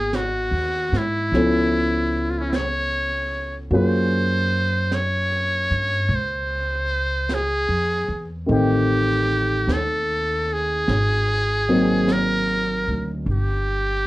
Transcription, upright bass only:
0.00 0.48 G#1 medium
0.51 0.89 D#2 medium
0.92 1.29 G#2 medium
1.32 3.67 C#2 medium
3.70 5.67 F#2 medium
5.71 6.06 G2 medium
6.09 7.64 C#2 medium
7.68 8.05 F2 soft
8.08 8.45 E2 medium
8.49 9.64 A1 medium
9.67 10.83 D#2 medium
10.88 12.85 G#1 medium
12.88 13.24 D2 medium
13.26 14.07 G1 medium

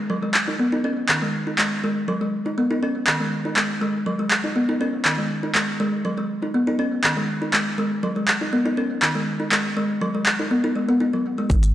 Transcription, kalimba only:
0.10 0.21 F#3 medium
0.23 0.29 G#3 medium
0.48 0.59 D#4 medium
0.59 0.71 B3 medium
0.72 0.84 D#4 medium
0.84 0.96 C#4 medium
1.09 1.21 D#3 medium
1.22 1.28 G#3 medium
1.47 1.58 D#4 medium
1.59 1.70 G#3 medium
1.84 1.90 G#3 medium
2.08 2.20 F#3 loud
2.21 2.27 G#3 medium
2.46 2.57 D#4 medium
2.58 2.69 B3 medium
2.71 2.82 D#4 medium
2.83 2.94 C#4 medium
3.08 3.19 D#3 medium
3.20 3.27 G#3 medium
3.45 3.56 D#4 medium
3.57 3.68 G#3 medium
3.81 3.88 G#3 medium
4.06 4.18 F#3 medium
4.19 4.26 G#3 medium
4.44 4.55 D#4 medium
4.56 4.67 B3 medium
4.69 4.80 D#4 medium
4.81 4.92 C#4 medium
5.05 5.17 D#3 medium
5.18 5.25 G#3 medium
5.43 5.54 D#4 medium
5.55 5.67 G#3 medium
5.80 5.87 G#3 medium
6.05 6.16 F#3 medium
6.17 6.24 G#3 medium
6.42 6.54 D#4 medium
6.54 6.66 B3 medium
6.67 6.78 D#4 loud
6.79 6.91 C#4 medium
7.04 7.16 D#3 medium
7.17 7.23 G#3 medium
7.42 7.53 D#4 medium
7.53 7.65 G#3 medium
7.78 7.85 G#3 medium
8.03 8.15 F#3 medium
8.16 8.22 G#3 medium
8.41 8.52 D#4 medium
8.53 8.64 B3 medium
8.66 8.77 D#4 medium
8.77 8.89 C#4 medium
9.02 9.14 D#3 medium
9.15 9.22 G#3 medium
9.40 9.51 D#4 medium
9.52 9.63 G#3 medium
9.77 9.84 G#3 medium
10.01 10.13 F#3 loud
10.15 10.21 G#3 medium
10.39 10.50 D#4 medium
10.51 10.63 B3 medium
10.64 10.75 D#4 loud
10.76 10.88 G#3 medium
10.89 10.95 B3 medium
11.00 11.12 D#4 medium
11.13 11.20 F#3 medium
11.38 11.49 G#3 medium
11.50 11.62 G#3 medium

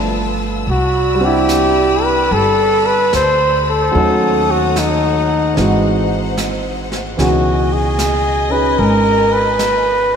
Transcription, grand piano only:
0.00 0.67 F3 soft
0.00 0.67 A3 soft
0.00 0.68 B3 soft
0.00 0.68 D4 soft
0.00 0.69 E5 soft
1.15 3.92 G3 medium
1.21 3.95 C4 medium
1.21 3.96 D4 medium
1.27 3.98 E4 medium
3.91 5.55 F#3 medium
3.91 5.56 A3 soft
3.91 5.57 C#4 soft
3.96 5.57 D#4 soft
3.96 5.58 F#4 medium
5.54 7.15 E3 soft
5.54 7.17 G#3 soft
5.54 7.18 C4 soft
5.54 7.17 D#4 soft
5.59 7.19 F#4 medium
7.17 10.16 B2 soft
7.17 10.16 E3 soft
7.17 8.48 C#4 soft
7.17 8.50 D#4 soft
7.17 8.51 G#4 medium
8.50 10.16 C#4 soft
8.50 10.16 D#4 soft
8.50 10.16 G#4 soft

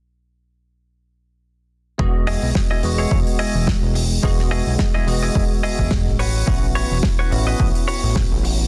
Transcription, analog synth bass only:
1.99 2.38 E1 medium
2.43 2.53 B1 medium
2.83 3.07 E1 medium
3.11 3.24 E1 medium
3.55 3.77 E1 medium
3.83 4.20 E1 loud
4.23 4.62 E1 loud
4.67 4.77 B1 medium
5.07 5.31 E1 medium
5.35 5.48 E1 medium
5.79 6.08 E1 medium
6.07 6.44 A1 medium
6.47 6.87 A1 medium
6.91 7.01 E1 medium
7.32 7.55 A1 medium
7.60 7.72 A1 medium
8.03 8.26 A1 medium
8.31 8.68 A1 loud

